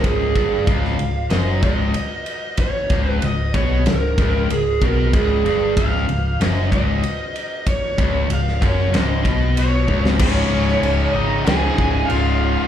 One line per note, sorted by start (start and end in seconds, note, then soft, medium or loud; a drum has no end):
0.03 0.33 C#1 medium
0.03 0.34 C#2 medium
0.03 0.70 G#4 medium
0.03 kick loud
0.03 ride medium
0.35 0.65 G1 medium
0.35 0.66 G2 medium
0.35 kick medium
0.35 ride medium
0.65 0.97 C#1 loud
0.65 0.98 C#2 loud
0.65 1.26 F5 loud
0.65 kick loud
0.65 ride medium
0.84 snare soft
0.98 1.28 C#1 medium
0.98 1.25 C#2 medium
0.98 ride medium
1.30 1.60 F#1 medium
1.30 1.62 F#2 medium
1.30 1.62 D#5 medium
1.30 snare loud
1.30 ride medium
1.62 1.92 C#1 medium
1.62 1.94 C#2 medium
1.62 2.60 D#5 loud
1.62 kick loud
1.62 ride medium
1.94 ride medium
2.26 ride medium
2.57 3.09 C#5 loud
2.57 kick medium
2.57 ride loud
2.90 3.20 C#1 medium
2.90 3.22 C#2 medium
2.90 kick loud
2.90 ride medium
3.09 3.25 B4 loud
3.22 3.52 C#1 medium
3.22 3.48 C#2 medium
3.22 3.55 D#5 medium
3.22 ride medium
3.54 3.83 B1 medium
3.54 3.85 B2 medium
3.54 3.87 C#5 medium
3.54 kick loud
3.54 ride medium
3.86 4.15 C#1 medium
3.86 4.11 C#2 medium
3.86 4.47 A#4 medium
3.86 snare loud
3.86 ride medium
4.18 4.48 C#1 medium
4.18 4.49 C#2 loud
4.18 kick loud
4.18 ride medium
4.50 4.79 C#1 medium
4.50 4.76 C#2 medium
4.50 4.84 G#4 medium
4.50 ride medium
4.82 5.11 B1 medium
4.82 5.12 B2 loud
4.82 5.14 A#4 medium
4.82 kick loud
4.82 ride medium
5.13 5.43 C#1 loud
5.13 5.44 C#2 medium
5.13 5.80 G#4 medium
5.13 kick loud
5.13 ride medium
5.44 5.74 G1 medium
5.44 5.76 G2 medium
5.44 ride medium
5.77 6.06 C#1 loud
5.77 6.07 C#2 loud
5.77 6.42 F5 medium
5.77 kick loud
5.77 ride medium
6.08 6.38 C#1 medium
6.08 6.34 C#2 medium
6.08 ride medium
6.40 6.70 F#1 medium
6.40 6.71 F#2 loud
6.40 6.71 D#5 medium
6.40 snare loud
6.40 ride medium
6.72 7.02 C#1 medium
6.72 7.03 C#2 loud
6.72 7.70 D#5 medium
6.72 kick loud
6.72 ride medium
7.04 ride medium
7.36 ride medium
7.67 8.27 C#5 medium
7.67 kick medium
7.67 ride medium
7.98 8.28 C#1 medium
7.98 8.28 C#2 loud
7.98 kick loud
7.98 ride medium
8.29 8.59 C#1 medium
8.29 8.55 C#2 medium
8.29 ride loud
8.33 8.65 F5 medium
8.48 snare soft
8.61 8.92 F#1 medium
8.61 8.91 F#2 medium
8.61 8.96 C#5 medium
8.61 kick loud
8.61 ride medium
8.91 9.24 C#1 medium
8.91 9.24 C#2 loud
8.91 snare loud
8.91 ride medium
8.97 9.55 D#5 medium
9.24 9.85 B1 medium
9.24 9.87 B2 medium
9.24 kick loud
9.24 ride medium
9.57 10.02 C#5 medium
9.57 ride medium
9.87 10.18 C#1 medium
9.87 10.18 C#2 loud
9.87 kick medium
10.05 snare medium
10.19 10.43 C#1 loud
10.19 11.46 C#2 loud
10.19 11.45 G#2 medium
10.19 11.47 C#3 loud
10.19 11.11 C#4 medium
10.19 11.18 C#5 loud
10.19 kick loud
10.19 crash loud
10.19 crash medium
10.51 10.74 C#1 medium
10.68 snare soft
10.81 11.05 C#1 loud
10.81 crash medium
11.14 11.37 G#1 medium
11.14 11.45 D#4 loud
11.14 11.48 D#5 loud
11.45 12.67 C#2 medium
11.45 11.69 C#2 loud
11.45 12.67 G#2 medium
11.45 12.67 C#3 medium
11.45 12.06 G#4 medium
11.45 12.11 G#5 loud
11.45 snare loud
11.45 crash medium
11.78 12.01 C#1 medium
11.78 kick medium
12.06 12.67 F5 medium
12.10 12.55 C#1 medium
12.10 12.67 F4 medium
12.10 crash medium